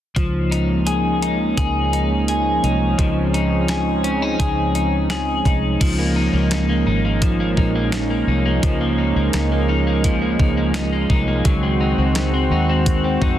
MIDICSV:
0, 0, Header, 1, 5, 480
1, 0, Start_track
1, 0, Key_signature, -5, "major"
1, 0, Tempo, 705882
1, 110, Time_signature, 4, 2, 24, 8
1, 9103, End_track
2, 0, Start_track
2, 0, Title_t, "Clean electric guitar"
2, 0, Program_c, 0, 27
2, 109, Note_on_c, 0, 53, 59
2, 349, Note_on_c, 0, 63, 46
2, 588, Note_on_c, 0, 68, 48
2, 829, Note_off_c, 0, 63, 0
2, 832, Note_on_c, 0, 63, 50
2, 1068, Note_off_c, 0, 68, 0
2, 1071, Note_on_c, 0, 68, 57
2, 1310, Note_off_c, 0, 63, 0
2, 1313, Note_on_c, 0, 63, 49
2, 1553, Note_off_c, 0, 68, 0
2, 1556, Note_on_c, 0, 68, 52
2, 1791, Note_off_c, 0, 63, 0
2, 1794, Note_on_c, 0, 63, 47
2, 2029, Note_off_c, 0, 53, 0
2, 2031, Note_on_c, 0, 53, 66
2, 2268, Note_off_c, 0, 63, 0
2, 2271, Note_on_c, 0, 63, 49
2, 2507, Note_off_c, 0, 68, 0
2, 2509, Note_on_c, 0, 68, 50
2, 2744, Note_off_c, 0, 63, 0
2, 2747, Note_on_c, 0, 61, 54
2, 2871, Note_off_c, 0, 61, 0
2, 2871, Note_on_c, 0, 63, 48
2, 2986, Note_off_c, 0, 68, 0
2, 2989, Note_on_c, 0, 68, 63
2, 3221, Note_off_c, 0, 63, 0
2, 3229, Note_on_c, 0, 63, 43
2, 3467, Note_off_c, 0, 68, 0
2, 3470, Note_on_c, 0, 68, 54
2, 3708, Note_off_c, 0, 63, 0
2, 3711, Note_on_c, 0, 63, 50
2, 3947, Note_off_c, 0, 53, 0
2, 3950, Note_on_c, 0, 53, 67
2, 4070, Note_on_c, 0, 58, 50
2, 4090, Note_off_c, 0, 68, 0
2, 4187, Note_off_c, 0, 63, 0
2, 4189, Note_on_c, 0, 63, 51
2, 4301, Note_off_c, 0, 58, 0
2, 4309, Note_on_c, 0, 58, 50
2, 4428, Note_off_c, 0, 63, 0
2, 4431, Note_on_c, 0, 63, 45
2, 4541, Note_off_c, 0, 58, 0
2, 4549, Note_on_c, 0, 58, 51
2, 4667, Note_off_c, 0, 63, 0
2, 4670, Note_on_c, 0, 63, 55
2, 4785, Note_off_c, 0, 58, 0
2, 4793, Note_on_c, 0, 58, 49
2, 4905, Note_off_c, 0, 53, 0
2, 4913, Note_on_c, 0, 53, 71
2, 5025, Note_off_c, 0, 58, 0
2, 5033, Note_on_c, 0, 58, 54
2, 5149, Note_off_c, 0, 63, 0
2, 5152, Note_on_c, 0, 63, 56
2, 5265, Note_off_c, 0, 58, 0
2, 5273, Note_on_c, 0, 58, 54
2, 5389, Note_off_c, 0, 63, 0
2, 5502, Note_off_c, 0, 58, 0
2, 5510, Note_on_c, 0, 58, 57
2, 5632, Note_on_c, 0, 63, 52
2, 5742, Note_off_c, 0, 58, 0
2, 5750, Note_on_c, 0, 58, 57
2, 5860, Note_off_c, 0, 53, 0
2, 5868, Note_on_c, 0, 53, 71
2, 5980, Note_off_c, 0, 58, 0
2, 5989, Note_on_c, 0, 58, 52
2, 6105, Note_off_c, 0, 63, 0
2, 6108, Note_on_c, 0, 63, 48
2, 6223, Note_off_c, 0, 58, 0
2, 6231, Note_on_c, 0, 58, 50
2, 6347, Note_off_c, 0, 63, 0
2, 6350, Note_on_c, 0, 63, 52
2, 6464, Note_off_c, 0, 58, 0
2, 6472, Note_on_c, 0, 58, 54
2, 6587, Note_off_c, 0, 63, 0
2, 6589, Note_on_c, 0, 63, 55
2, 6704, Note_off_c, 0, 58, 0
2, 6712, Note_on_c, 0, 58, 55
2, 6824, Note_off_c, 0, 53, 0
2, 6833, Note_on_c, 0, 53, 77
2, 6940, Note_off_c, 0, 58, 0
2, 6948, Note_on_c, 0, 58, 51
2, 7068, Note_off_c, 0, 63, 0
2, 7071, Note_on_c, 0, 63, 55
2, 7182, Note_off_c, 0, 58, 0
2, 7190, Note_on_c, 0, 58, 54
2, 7307, Note_off_c, 0, 63, 0
2, 7310, Note_on_c, 0, 63, 54
2, 7420, Note_off_c, 0, 58, 0
2, 7428, Note_on_c, 0, 58, 55
2, 7548, Note_off_c, 0, 63, 0
2, 7551, Note_on_c, 0, 63, 54
2, 7660, Note_off_c, 0, 58, 0
2, 7669, Note_on_c, 0, 58, 52
2, 7782, Note_off_c, 0, 53, 0
2, 7785, Note_on_c, 0, 54, 69
2, 7838, Note_off_c, 0, 58, 0
2, 7907, Note_on_c, 0, 60, 52
2, 8025, Note_off_c, 0, 63, 0
2, 8028, Note_on_c, 0, 63, 54
2, 8141, Note_off_c, 0, 60, 0
2, 8149, Note_on_c, 0, 60, 50
2, 8267, Note_off_c, 0, 63, 0
2, 8270, Note_on_c, 0, 63, 52
2, 8381, Note_off_c, 0, 60, 0
2, 8389, Note_on_c, 0, 60, 54
2, 8508, Note_off_c, 0, 63, 0
2, 8511, Note_on_c, 0, 63, 60
2, 8624, Note_off_c, 0, 60, 0
2, 8632, Note_on_c, 0, 60, 56
2, 8861, Note_off_c, 0, 60, 0
2, 8869, Note_on_c, 0, 60, 49
2, 8889, Note_off_c, 0, 54, 0
2, 8987, Note_off_c, 0, 63, 0
2, 8989, Note_on_c, 0, 63, 52
2, 9095, Note_off_c, 0, 60, 0
2, 9103, Note_off_c, 0, 63, 0
2, 9103, End_track
3, 0, Start_track
3, 0, Title_t, "Analog synth pad"
3, 0, Program_c, 1, 89
3, 110, Note_on_c, 1, 61, 62
3, 113, Note_on_c, 1, 53, 60
3, 113, Note_on_c, 1, 56, 60
3, 114, Note_on_c, 1, 58, 55
3, 115, Note_on_c, 1, 63, 72
3, 2013, Note_off_c, 1, 58, 0
3, 2033, Note_on_c, 1, 60, 68
3, 3923, Note_off_c, 1, 61, 0
3, 3924, Note_off_c, 1, 53, 0
3, 3925, Note_off_c, 1, 56, 0
3, 3926, Note_off_c, 1, 63, 0
3, 3932, Note_off_c, 1, 60, 0
3, 3950, Note_on_c, 1, 61, 74
3, 3951, Note_on_c, 1, 53, 63
3, 3951, Note_on_c, 1, 63, 75
3, 3952, Note_on_c, 1, 56, 64
3, 3954, Note_on_c, 1, 58, 68
3, 7763, Note_off_c, 1, 61, 0
3, 7764, Note_off_c, 1, 53, 0
3, 7764, Note_off_c, 1, 63, 0
3, 7765, Note_off_c, 1, 58, 0
3, 7789, Note_on_c, 1, 51, 66
3, 7791, Note_on_c, 1, 60, 65
3, 7792, Note_on_c, 1, 66, 78
3, 9103, Note_off_c, 1, 51, 0
3, 9103, Note_off_c, 1, 56, 0
3, 9103, Note_off_c, 1, 60, 0
3, 9103, Note_off_c, 1, 66, 0
3, 9103, End_track
4, 0, Start_track
4, 0, Title_t, "Fingered electric bass"
4, 0, Program_c, 2, 33
4, 111, Note_on_c, 2, 37, 88
4, 1043, Note_off_c, 2, 37, 0
4, 1071, Note_on_c, 2, 37, 77
4, 1763, Note_off_c, 2, 37, 0
4, 1791, Note_on_c, 2, 36, 65
4, 2019, Note_off_c, 2, 36, 0
4, 2032, Note_on_c, 2, 37, 90
4, 2964, Note_off_c, 2, 37, 0
4, 2989, Note_on_c, 2, 37, 78
4, 3683, Note_off_c, 2, 37, 0
4, 3708, Note_on_c, 2, 36, 77
4, 3937, Note_off_c, 2, 36, 0
4, 3950, Note_on_c, 2, 37, 89
4, 4292, Note_off_c, 2, 37, 0
4, 4304, Note_on_c, 2, 37, 77
4, 4649, Note_off_c, 2, 37, 0
4, 4665, Note_on_c, 2, 32, 86
4, 5123, Note_off_c, 2, 32, 0
4, 5150, Note_on_c, 2, 34, 70
4, 5606, Note_off_c, 2, 34, 0
4, 5625, Note_on_c, 2, 36, 75
4, 5856, Note_off_c, 2, 36, 0
4, 5869, Note_on_c, 2, 37, 101
4, 6212, Note_off_c, 2, 37, 0
4, 6228, Note_on_c, 2, 37, 81
4, 6343, Note_off_c, 2, 37, 0
4, 6347, Note_on_c, 2, 37, 84
4, 7041, Note_off_c, 2, 37, 0
4, 7069, Note_on_c, 2, 37, 77
4, 7525, Note_off_c, 2, 37, 0
4, 7545, Note_on_c, 2, 36, 86
4, 7776, Note_off_c, 2, 36, 0
4, 7788, Note_on_c, 2, 37, 107
4, 8131, Note_off_c, 2, 37, 0
4, 8144, Note_on_c, 2, 37, 73
4, 8489, Note_off_c, 2, 37, 0
4, 8502, Note_on_c, 2, 39, 80
4, 8962, Note_off_c, 2, 39, 0
4, 8986, Note_on_c, 2, 41, 77
4, 9103, Note_off_c, 2, 41, 0
4, 9103, End_track
5, 0, Start_track
5, 0, Title_t, "Drums"
5, 111, Note_on_c, 9, 36, 78
5, 111, Note_on_c, 9, 42, 49
5, 179, Note_off_c, 9, 36, 0
5, 179, Note_off_c, 9, 42, 0
5, 355, Note_on_c, 9, 42, 38
5, 423, Note_off_c, 9, 42, 0
5, 589, Note_on_c, 9, 42, 59
5, 657, Note_off_c, 9, 42, 0
5, 833, Note_on_c, 9, 42, 45
5, 901, Note_off_c, 9, 42, 0
5, 1071, Note_on_c, 9, 36, 66
5, 1071, Note_on_c, 9, 42, 59
5, 1139, Note_off_c, 9, 36, 0
5, 1139, Note_off_c, 9, 42, 0
5, 1314, Note_on_c, 9, 42, 44
5, 1382, Note_off_c, 9, 42, 0
5, 1552, Note_on_c, 9, 42, 56
5, 1620, Note_off_c, 9, 42, 0
5, 1794, Note_on_c, 9, 42, 37
5, 1862, Note_off_c, 9, 42, 0
5, 2031, Note_on_c, 9, 36, 87
5, 2032, Note_on_c, 9, 42, 59
5, 2099, Note_off_c, 9, 36, 0
5, 2100, Note_off_c, 9, 42, 0
5, 2273, Note_on_c, 9, 42, 39
5, 2341, Note_off_c, 9, 42, 0
5, 2505, Note_on_c, 9, 42, 56
5, 2510, Note_on_c, 9, 38, 80
5, 2573, Note_off_c, 9, 42, 0
5, 2578, Note_off_c, 9, 38, 0
5, 2749, Note_on_c, 9, 42, 48
5, 2817, Note_off_c, 9, 42, 0
5, 2990, Note_on_c, 9, 36, 80
5, 2990, Note_on_c, 9, 42, 67
5, 3058, Note_off_c, 9, 36, 0
5, 3058, Note_off_c, 9, 42, 0
5, 3231, Note_on_c, 9, 42, 53
5, 3299, Note_off_c, 9, 42, 0
5, 3467, Note_on_c, 9, 38, 100
5, 3470, Note_on_c, 9, 42, 58
5, 3535, Note_off_c, 9, 38, 0
5, 3538, Note_off_c, 9, 42, 0
5, 3709, Note_on_c, 9, 36, 69
5, 3713, Note_on_c, 9, 42, 38
5, 3777, Note_off_c, 9, 36, 0
5, 3781, Note_off_c, 9, 42, 0
5, 3950, Note_on_c, 9, 36, 95
5, 3951, Note_on_c, 9, 42, 64
5, 3951, Note_on_c, 9, 49, 82
5, 4018, Note_off_c, 9, 36, 0
5, 4019, Note_off_c, 9, 42, 0
5, 4019, Note_off_c, 9, 49, 0
5, 4426, Note_on_c, 9, 42, 66
5, 4431, Note_on_c, 9, 38, 83
5, 4494, Note_off_c, 9, 42, 0
5, 4499, Note_off_c, 9, 38, 0
5, 4908, Note_on_c, 9, 42, 70
5, 4910, Note_on_c, 9, 36, 81
5, 4976, Note_off_c, 9, 42, 0
5, 4978, Note_off_c, 9, 36, 0
5, 5149, Note_on_c, 9, 36, 72
5, 5217, Note_off_c, 9, 36, 0
5, 5388, Note_on_c, 9, 38, 109
5, 5390, Note_on_c, 9, 42, 71
5, 5456, Note_off_c, 9, 38, 0
5, 5458, Note_off_c, 9, 42, 0
5, 5869, Note_on_c, 9, 42, 65
5, 5870, Note_on_c, 9, 36, 94
5, 5937, Note_off_c, 9, 42, 0
5, 5938, Note_off_c, 9, 36, 0
5, 6346, Note_on_c, 9, 42, 69
5, 6351, Note_on_c, 9, 38, 87
5, 6414, Note_off_c, 9, 42, 0
5, 6419, Note_off_c, 9, 38, 0
5, 6828, Note_on_c, 9, 42, 73
5, 6830, Note_on_c, 9, 36, 75
5, 6896, Note_off_c, 9, 42, 0
5, 6898, Note_off_c, 9, 36, 0
5, 7069, Note_on_c, 9, 36, 76
5, 7137, Note_off_c, 9, 36, 0
5, 7304, Note_on_c, 9, 38, 102
5, 7307, Note_on_c, 9, 42, 70
5, 7372, Note_off_c, 9, 38, 0
5, 7375, Note_off_c, 9, 42, 0
5, 7547, Note_on_c, 9, 36, 75
5, 7615, Note_off_c, 9, 36, 0
5, 7786, Note_on_c, 9, 42, 62
5, 7787, Note_on_c, 9, 36, 88
5, 7854, Note_off_c, 9, 42, 0
5, 7855, Note_off_c, 9, 36, 0
5, 8263, Note_on_c, 9, 42, 67
5, 8268, Note_on_c, 9, 38, 94
5, 8331, Note_off_c, 9, 42, 0
5, 8336, Note_off_c, 9, 38, 0
5, 8747, Note_on_c, 9, 42, 77
5, 8748, Note_on_c, 9, 36, 79
5, 8815, Note_off_c, 9, 42, 0
5, 8816, Note_off_c, 9, 36, 0
5, 8987, Note_on_c, 9, 36, 77
5, 9055, Note_off_c, 9, 36, 0
5, 9103, End_track
0, 0, End_of_file